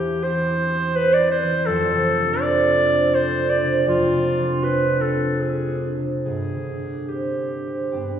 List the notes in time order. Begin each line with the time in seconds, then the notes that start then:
Already playing: E1 E2 E3 C4 G4 C5
0.00 E4
0.23 C4 C5
0.50 E4
0.73 C4
0.96 B4 C5
1.13 D5
1.19 E4
1.31 C5
1.43 E3
1.66 F1 F2 A4
1.92 C3
2.17 D4
2.41 C4 D5
2.67 D4
2.92 C4
3.15 A4 C5
3.39 D4
3.50 D5
3.63 C3
3.86 F1 F2 F4
4.13 C3
4.37 D4
4.63 C4 B4
4.89 D4
5.01 A4
5.15 C4
5.40 G#4
5.68 D4
5.98 C3
6.25 G1 G2 G#4
6.55 D3
6.84 D4
7.09 C4 G4
7.41 D4
7.67 C4
7.92 G2 B3 D4 G4